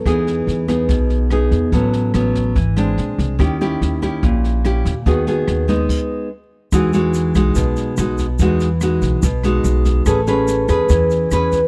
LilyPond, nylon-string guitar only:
\new Staff \with { instrumentName = "Nylon-string guitar" } { \time 4/4 \key e \major \tempo 4 = 144 << { <b dis' gis'>4. <b dis' gis'>4. <b dis' gis'>4 | <fis b cis'>4 <fis b cis'>4 r8 <gis c' d'>4. | <cis' e' g'>8 <cis' e' g'>4 <cis' e' g'>4. <cis' e' g'>8 r8 | <b fis' gis'>8 <b fis' gis'>4 <gis b dis'>4. r4 |
<gis dis' fis'>8 <gis dis' fis'>4 <gis dis' fis'>4. <gis dis' fis'>8 r8 | <gis dis' fis'>8 r8 <gis dis' fis'>4 r8 <gis dis' fis'>4. | <cis' gis' b'>8 <cis' gis' b'>4 <cis' gis' b'>4. <cis' gis' b'>8 r8 | } \\ { e2 b,2 | a,2 e4 r4 | dis2 ais,2 | dis2 r2 |
e2 b,2 | e2 b,2 | a2 e2 | } >> }